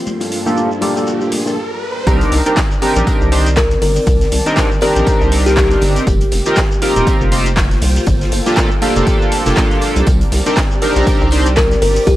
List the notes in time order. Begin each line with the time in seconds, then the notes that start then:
Already playing: F4 C5 G5 C6, riser
0.07 G2 A#3 D4 F4 G4 A4, high conga, shekere
0.21 open hi-hat, high bongo, shekere
0.31 D5, open hi-hat
0.46 A#3 D4 F4 G4 A4, high conga, shekere
0.56 high bongo, shekere
0.71 shekere
0.81 A#3 D4 F4 G4 A4, open hi-hat, high bongo, high conga
0.96 A#3 D4 F4 G4 A4, shekere
1.07 shekere
1.21 high bongo, shekere
1.32 open hi-hat, high conga
1.46 A#3 D4 F4 G4 A4, high bongo, shekere
2.07 C2 D#3 C4 D4 D#4 G4 A#4 D5, kick, closed hi-hat, tambourine, shekere
2.21 closed hi-hat, shekere
2.32 C2, snare, open hi-hat, tambourine
2.46 C4 D4 D#4 G4 A#4, closed hi-hat, shekere
2.57 kick, snare, clap, closed hi-hat, tambourine, shekere
2.71 shekere
2.82 C4 D4 D#4 G4 A#4, open hi-hat, tambourine
2.96 A#1 C4 D4 D#4 G4 A#4, closed hi-hat, shekere
3.07 kick, closed hi-hat, tambourine, shekere
3.21 C2, shekere
3.32 C4 D4 D#4 G4 C5, open hi-hat, tambourine
3.46 closed hi-hat, shekere
3.56 A#4, kick, snare, clap, closed hi-hat, tambourine, shekere
3.71 snare, closed hi-hat, shekere
3.82 G1 A#4, open hi-hat
3.96 closed hi-hat, shekere
4.07 C2 A5, kick, closed hi-hat, tambourine, shekere
4.21 snare, closed hi-hat, shekere
4.32 C2, open hi-hat
4.46 C4 D4 D#4 G4 A#4, closed hi-hat, shekere
4.57 kick, snare, clap, closed hi-hat, tambourine, shekere
4.71 shekere
4.81 C4 D4 D#4 G4 A#4, open hi-hat, tambourine
4.96 A#1 C4 D4 D#4 G4 A#4, closed hi-hat, shekere
5.07 kick, closed hi-hat, tambourine, shekere
5.21 C2, shekere
5.32 open hi-hat, tambourine
5.46 G4, snare, closed hi-hat, shekere
5.57 kick, snare, clap, closed hi-hat, tambourine, shekere
5.71 snare, closed hi-hat, shekere
5.81 G1, snare, open hi-hat, tambourine
5.96 closed hi-hat, shekere
6.07 F1 A#3 F4 G4, kick, closed hi-hat, tambourine, shekere
6.21 C5, closed hi-hat, shekere
6.31 F1, snare, open hi-hat, tambourine
6.46 C4 D#4 F4 G4 A#4, closed hi-hat, shekere
6.56 kick, snare, clap, closed hi-hat, tambourine, shekere
6.71 shekere
6.82 C4 D#4 F4 G4 A#4, open hi-hat, tambourine
6.96 D#1 C4 D#4 F4 G4 A#4 G5, closed hi-hat, shekere
7.07 kick, closed hi-hat, tambourine, shekere
7.21 F1, shekere
7.32 C4 D#4 F4 G4 C5, open hi-hat, tambourine
7.46 closed hi-hat, shekere
7.56 kick, snare, clap, closed hi-hat, tambourine, shekere
7.71 snare, closed hi-hat, shekere
7.82 C2, open hi-hat
7.96 closed hi-hat, shekere
8.06 G1 F4 G4 A4, kick, closed hi-hat, tambourine, shekere
8.21 snare, closed hi-hat, shekere
8.32 G1, open hi-hat, tambourine
8.45 A#3 D4 F4 G4 A4 D5, snare, closed hi-hat, shekere
8.56 kick, snare, clap, closed hi-hat, tambourine, shekere
8.71 shekere
8.82 A#3 D4 F4 G4 A4, open hi-hat, tambourine
8.96 F1 A#3 D4 F4 G4 A4 A5, closed hi-hat, shekere
9.07 kick, closed hi-hat, tambourine, shekere
9.22 shekere
9.32 open hi-hat, tambourine
9.46 F1 A#3 D4 F4 G4 A4, snare, closed hi-hat, shekere
9.56 kick, snare, clap, closed hi-hat, tambourine, shekere
9.71 snare, closed hi-hat, shekere
9.81 snare, open hi-hat, tambourine
9.96 C2, closed hi-hat, shekere
10.06 C2 C4 A#4 D5, kick, closed hi-hat, tambourine, shekere
10.21 closed hi-hat, shekere
10.32 C2, snare, open hi-hat, tambourine
10.46 C4 D4 D#4 G4 A#4, closed hi-hat, shekere
10.57 kick, snare, clap, closed hi-hat, tambourine, shekere
10.71 shekere
10.82 C4 D4 D#4 G4 A#4, open hi-hat, tambourine
10.96 A#1 C4 D4 D#4 G4 A#4, closed hi-hat, shekere
11.07 kick, closed hi-hat, tambourine, shekere
11.21 C2, shekere
11.31 C4 D4 D#4 G4 C5, open hi-hat, tambourine
11.46 closed hi-hat, shekere
11.56 A#4, kick, snare, clap, closed hi-hat, tambourine, shekere
11.71 snare, closed hi-hat, shekere
11.82 G1 A#4, open hi-hat
11.96 closed hi-hat, shekere
12.07 C2 G4 A5, kick, closed hi-hat, tambourine, shekere